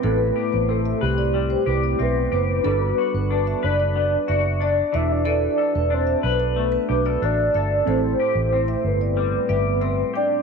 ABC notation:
X:1
M:4/4
L:1/16
Q:1/4=92
K:Ador
V:1 name="Vibraphone"
A z2 c z e z d z c z d e z c z | A z2 B z e z d z2 e2 d z e z | A z2 B z e z d z B z d e z e z | A z2 c z e z d z2 e2 e z g z |]
V:2 name="Soft synth lead"
z4 A2 G6 B4 | B6 d6 d2 e d | d4 c2 B6 d4 | c6 B8 d2 |]
V:3 name="Synth keys"
[CEGB]8- [CEGB]2 [CEGB]6 | [DFAB]12- [DFAB]2 [DFAd]2- | [DFAd]8- [DFAd]2 [DFAB]6 | [CEGA]16 |]
V:4 name="Clean electric guitar"
[A,,G,CGB]2 G2 C2 B2 G,2 G2 C2 G2 | G,2 F2 D2 B2 B,2 F2 D2 E,2 | E,2 A2 D2 B2 A,2 G A D2 A2 | A,,2 G2 C4 G,2 G2 C2 G2 |]
V:5 name="Fingered electric bass" clef=bass
A,,,2 z A,,,3 C,,4 C,,2 B,,,2 F,,,2 | G,,,2 z G,,,3 F,,,4 F,,,4 E,,,2- | E,,,2 z E,,,3 B,,,4 B,,,2 A,,,2 G,,,2 | A,,,2 z A,,,3 G,,,4 G,,,4 z2 |]